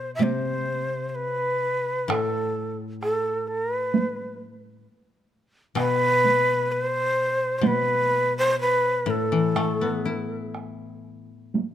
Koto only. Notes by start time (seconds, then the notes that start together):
Already playing: B2
0.19 C3
2.08 A2
5.75 B2
7.61 B2
9.06 A2
9.32 E3
9.56 A3
9.81 B3
10.05 E4